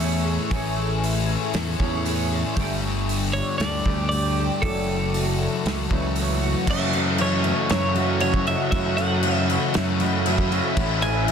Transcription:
Already playing: E2 A2 E3 A3 C#4 G#4 E5 G#5 C#6
0.00 A3 C#4 E4 G#4 C#5, open hi-hat
0.26 G#4
0.50 A1 A2 E3 A3 C#4 E4 G#4, kick, open hi-hat
0.54 C#5
0.77 A3
1.03 G#4, open hi-hat
1.29 C#4
1.54 E2 A3, snare, open hi-hat
1.79 E2 E3 A3 C#4 E4 G#4 C#5, kick
2.04 A3 C#4 E4 G#4 C#5, open hi-hat
2.32 G#4
2.56 G1 G2 D3 G3 A3 D4 G4 D5 G5 D6, kick, open hi-hat
2.60 D5
2.83 A3
3.09 G4, open hi-hat
3.33 D4 C#5
3.58 D2 A3 D5, snare, open hi-hat
3.86 D2 A3 D4 G4 D5, kick
3.90 G3
4.09 G3 A3 D5, open hi-hat
4.13 D4 G4 D5
4.38 G4
4.62 F#1 F#2 C#3 E3 F#3 A3 E4 F#4 A4 E5 F#5 C#6, kick, open hi-hat
4.66 C#5
4.90 A3
5.14 F#4, open hi-hat
5.41 C#4
5.66 C#2, snare, open hi-hat
5.90 C#2 E3 A3 E4 F#4 C#5, kick
5.95 F#3
6.16 F#3 A3 E4 F#4, open hi-hat
6.20 C#5
6.42 F#4
6.66 F#2 C#3 E3 F#3 A3 E4 F#4 C#5 E5 F#5 C#6, kick, crash
6.71 E5
6.91 F#3 A3 E4 F#4 C#5, crash
6.96 C#3
7.17 F#2 C#3 E3 A3 E4 F#4 C#5, crash
7.21 F#3 C#5
7.43 F#2 C#3 F#3 A3 E4 F#4 C#5, crash
7.69 F#2 C#3 F#3 A3 C#4 E4 F#4 C#5, snare, crash
7.94 F#2 C#3 F#3 F#4, crash
8.19 F#2 C#3 A3 C#4 E4 F#4 C#5, crash
8.23 F#3
8.34 kick
8.45 C#3 F#3 E4 F#4 C#5 E5, crash
8.71 F#2 C#3 E3 F#3 A3 E4 F#4 E5 B5, kick, crash
8.75 C#5
8.97 C#3 F#3 A3 F#4 C#5 F#5, crash
9.22 F#2 C#3 E3 F#3 A3 E4 F#4, crash
9.27 C#5
9.48 F#2 C#3 F#3 A3 F#4 C#5, crash
9.53 E4
9.73 F#2 C#3 F#3 A3 C#4 E4 F#4 C#5, snare, crash
10.00 F#2 C#3 F#3 F#4, crash
10.25 F#2 C#3 F#3 A3 C#4 E4 F#4 C#5, crash
10.38 kick
10.50 C#3 F#3 E4 F#4 C#5, crash
10.77 A1 A2 E3 A3 C#4 E4 G#5 C#6, kick, crash
11.02 E3 A3 C#4 E4 G#5, crash
11.28 A2 E3, crash

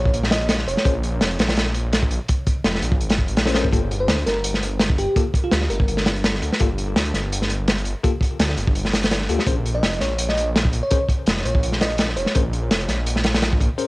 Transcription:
Already playing: A#1 C#5
0.05 kick
0.13 A#1, closed hi-hat
0.23 snare
0.31 A#1 D#5, snare, closed hi-hat
0.41 closed hi-hat
0.49 snare, closed hi-hat
0.58 snare
0.67 F1 C#5, closed hi-hat
0.77 snare
0.85 A#1 C#4 G#4 A#4 C5, kick, closed hi-hat
1.03 closed hi-hat
1.21 F1, snare, closed hi-hat
1.31 closed hi-hat
1.39 A#1, snare, closed hi-hat
1.49 snare, closed hi-hat
1.56 snare, closed hi-hat
1.66 snare
1.74 closed hi-hat
1.93 snare, closed hi-hat
2.03 kick
2.11 A#1, closed hi-hat
2.28 kick, closed hi-hat
2.47 kick, closed hi-hat
2.64 F1, snare, closed hi-hat
2.75 snare
2.82 A#1, closed hi-hat
2.92 kick
3.00 G#1, closed hi-hat
3.09 snare, closed hi-hat
3.18 F1, kick
3.28 A#1, closed hi-hat
3.37 snare, closed hi-hat
3.46 C#4 G#4 A#4 C5, snare, closed hi-hat
3.54 C#4 G#4 A#4 C5, snare, closed hi-hat
3.65 kick
3.72 G1 A#3 F4 G4 A4, kick, closed hi-hat
3.91 closed hi-hat
4.00 C5
4.08 D2, snare, closed hi-hat
4.19 closed hi-hat
4.26 G1 A#4, snare, closed hi-hat
4.44 closed hi-hat
4.54 snare
4.63 closed hi-hat
4.79 snare, closed hi-hat
4.90 kick
4.98 G1 G4, closed hi-hat
5.16 A#3 F4 G4 A4, kick, closed hi-hat
5.34 kick, closed hi-hat
5.44 F4
5.51 D2, snare, closed hi-hat
5.62 snare
5.70 G1 A#4, closed hi-hat
5.80 kick
5.88 G1, closed hi-hat
5.97 snare
6.06 G1, snare, closed hi-hat
6.16 closed hi-hat
6.24 snare, closed hi-hat
6.34 snare
6.42 D2, closed hi-hat
6.52 snare
6.60 G1 A#3 F4 G4 A4, kick, closed hi-hat
6.78 closed hi-hat
6.96 D2, snare, closed hi-hat
7.05 closed hi-hat
7.14 G1, snare, closed hi-hat
7.32 closed hi-hat
7.42 snare
7.50 closed hi-hat
7.68 snare, closed hi-hat
7.78 closed hi-hat
7.85 G1, closed hi-hat
8.03 A#3 F4 G4 A4, kick, closed hi-hat
8.21 kick, closed hi-hat
8.39 D2, snare, closed hi-hat
8.49 snare
8.57 G1, closed hi-hat
8.67 kick
8.75 G1, closed hi-hat
8.85 snare
8.93 G1, snare, closed hi-hat
9.03 snare, closed hi-hat
9.11 snare, closed hi-hat
9.21 snare
9.29 D2 A#3 F4 G4 A4, closed hi-hat
9.39 snare
9.47 A#1 C#4 G#4 A#4 C5, kick, closed hi-hat
9.66 closed hi-hat
9.75 D#5
9.83 F1, snare, closed hi-hat
9.93 closed hi-hat
10.00 A#1 C#5, snare, closed hi-hat
10.18 closed hi-hat
10.29 D#5, snare
10.37 closed hi-hat
10.56 snare, closed hi-hat
10.65 kick
10.73 A#1, closed hi-hat
10.83 C#5
10.91 C#4 G#4 A#4 C5, kick, closed hi-hat
11.09 kick, closed hi-hat
11.26 F1, snare, closed hi-hat
11.37 snare
11.45 A#1 C#5, closed hi-hat
11.55 kick
11.63 A#1, closed hi-hat
11.72 snare
11.81 A#1 D#5, snare, closed hi-hat
11.90 closed hi-hat
11.98 snare, closed hi-hat
12.09 snare
12.17 F1 C#5, closed hi-hat
12.26 snare
12.35 A#1 C#4 G#4 A#4 C5, kick, closed hi-hat
12.53 closed hi-hat
12.71 F1, snare, closed hi-hat
12.80 closed hi-hat
12.88 A#1, snare, closed hi-hat
13.07 closed hi-hat
13.16 snare
13.24 snare, closed hi-hat
13.35 snare, closed hi-hat
13.42 snare, closed hi-hat
13.53 kick
13.61 A#1, kick, closed hi-hat
13.78 C#4 G#4 A#4 C5, closed hi-hat

